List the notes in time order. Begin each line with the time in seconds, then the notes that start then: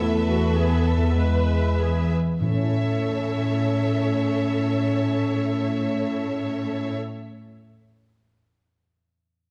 Already playing: E2 A3 B3 E4 A4 B4 E5
0.00 E2 A3 B4
0.28 F#4
0.57 B3 G#4
0.86 A4
0.97 E2
1.02 B3
1.06 E4
1.11 B4
1.15 G#3 B4
1.78 G#4
2.41 A2 C#4 A4 C#5 E5
2.48 A3
2.55 C#4
2.63 E4
2.70 A4
2.77 E5